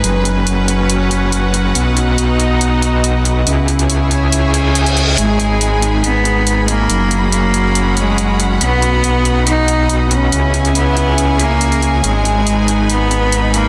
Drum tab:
HH |x-x-x-x-x-x-x-x-|x-x-x-x-x-x-x-x-|x-xxx-x-x-x-xxx-|x-x-x-x-x-x-x-x-|

HH |x-x-x-x-x-x-x-x-|x-x-x-x-x-x-x-x-|x-xxx-x-x-x-xxx-|x-x-x-x-x-x-x-x-|